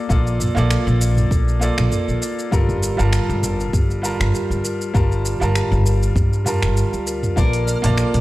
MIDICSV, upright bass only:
0, 0, Header, 1, 2, 480
1, 0, Start_track
1, 0, Tempo, 606061
1, 77, Time_signature, 4, 2, 24, 8
1, 6500, End_track
2, 0, Start_track
2, 0, Title_t, "Upright bass"
2, 0, Program_c, 0, 32
2, 78, Note_on_c, 0, 34, 95
2, 370, Note_off_c, 0, 34, 0
2, 447, Note_on_c, 0, 34, 105
2, 590, Note_off_c, 0, 34, 0
2, 687, Note_on_c, 0, 34, 105
2, 972, Note_off_c, 0, 34, 0
2, 1039, Note_on_c, 0, 34, 85
2, 1331, Note_off_c, 0, 34, 0
2, 1409, Note_on_c, 0, 34, 97
2, 1477, Note_off_c, 0, 34, 0
2, 1648, Note_on_c, 0, 34, 75
2, 1716, Note_off_c, 0, 34, 0
2, 1998, Note_on_c, 0, 31, 100
2, 2290, Note_off_c, 0, 31, 0
2, 2368, Note_on_c, 0, 31, 102
2, 2511, Note_off_c, 0, 31, 0
2, 2608, Note_on_c, 0, 31, 106
2, 2892, Note_off_c, 0, 31, 0
2, 2957, Note_on_c, 0, 31, 90
2, 3250, Note_off_c, 0, 31, 0
2, 3326, Note_on_c, 0, 31, 99
2, 3396, Note_off_c, 0, 31, 0
2, 3566, Note_on_c, 0, 31, 79
2, 3636, Note_off_c, 0, 31, 0
2, 3918, Note_on_c, 0, 31, 99
2, 4210, Note_off_c, 0, 31, 0
2, 4287, Note_on_c, 0, 31, 99
2, 4430, Note_off_c, 0, 31, 0
2, 4526, Note_on_c, 0, 31, 102
2, 4811, Note_off_c, 0, 31, 0
2, 4878, Note_on_c, 0, 43, 103
2, 5248, Note_on_c, 0, 31, 81
2, 5260, Note_off_c, 0, 43, 0
2, 5391, Note_off_c, 0, 31, 0
2, 5488, Note_on_c, 0, 38, 81
2, 5772, Note_off_c, 0, 38, 0
2, 5837, Note_on_c, 0, 34, 99
2, 6130, Note_off_c, 0, 34, 0
2, 6209, Note_on_c, 0, 34, 104
2, 6351, Note_off_c, 0, 34, 0
2, 6449, Note_on_c, 0, 34, 107
2, 6500, Note_off_c, 0, 34, 0
2, 6500, End_track
0, 0, End_of_file